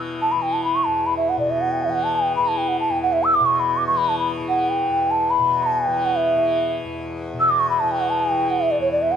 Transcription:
Already playing: E2 B2 E3
0.21 A5
0.31 B5
0.36 E3
0.42 G5
0.53 A5
0.64 B5
0.75 C#6
0.84 E2 A5
1.06 B5
1.17 E5
1.29 F#5
1.37 B2 D5
1.50 E5
1.61 F#5
1.71 G5
1.82 E5
1.88 E3 G5
1.94 F#5
2.03 A5
2.15 G5
2.36 E3 B5
2.48 A5
2.58 G5
2.68 F#5
2.80 A5
2.90 E2 G5
3.02 F#5
3.12 E5
3.24 E6
3.34 D6
3.40 B2
3.45 C#6
3.55 B5 C#6
3.77 D6
3.87 E3 C#6
3.97 B5
4.09 A5
4.19 B5
4.41 E3
4.48 F#5
4.69 G5
4.89 E2
5.10 A5
5.30 B5
5.39 B2
5.63 A5
5.73 G5
5.87 E3
6.05 F#5
6.16 E5
6.36 E3
6.85 E2
7.33 B2
7.40 E6
7.50 D6
7.59 C#6
7.70 B5
7.80 E3 A5
7.88 G5 A5
8.00 F#5
8.10 A5
8.20 G5
8.30 E3
8.50 F#5
8.61 E5
8.71 D5
8.79 E2 C#5
8.92 D5
9.02 E5
9.12 F#5

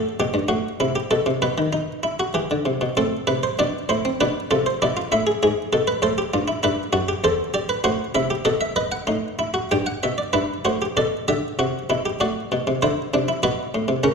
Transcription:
0.20 B2 G4
0.34 G2
0.48 A2 F#4
0.80 C3 E4
0.96 G4
1.11 B2 A4
1.26 C3
1.42 B2 B4
1.58 D#3
1.73 D#4
2.03 E4
2.20 F#4
2.34 E3 G4
2.51 D3
2.65 C3
2.81 B2
2.97 A2 C4 A4
3.27 C3 B4
3.43 C5
3.59 B2 D4 D5
3.89 A2 E4 C5
4.05 C4
4.21 B2 D4 B4
4.51 C3 F4 A4
4.66 C5
4.82 B2 E4 D5
4.97 F4
5.12 A2 E4 E5
5.27 G#4
5.43 G#2 G#4
5.73 B2 A4
5.88 B4
6.02 A2 A4 C5
6.18 G4
6.34 G2 F4
6.48 E4
6.63 G2 E4 B4
6.93 F#2 F#4
7.09 G4
7.24 E2 A4 C5
7.54 G4 D5
7.69 B4
7.84 A2 F#4 C5
8.15 C3 E4 E5
8.30 G4
8.45 B2 A4 D#5
8.61 E5
8.76 B4 D#5
8.92 F#5
9.07 A2 D#4
9.39 E4
9.54 F#4
9.71 G2 G4 G5
9.86 F#5
10.03 B2 E5
10.18 D5
10.33 G2 E4 B4
10.65 A2 F#4 C5
10.82 G4
10.97 B2 A4 D5
11.28 D3 G4 E5
11.59 C3 F#4
11.90 B2 E4
12.06 G4
12.20 A2 F#4 D5
12.52 B2
12.67 C3
12.82 D3 E4 C5
13.14 C3 D4
13.28 E4
13.43 B2 F#4 B4
13.74 A2
13.88 C3
14.03 C#3 C#4 A#4

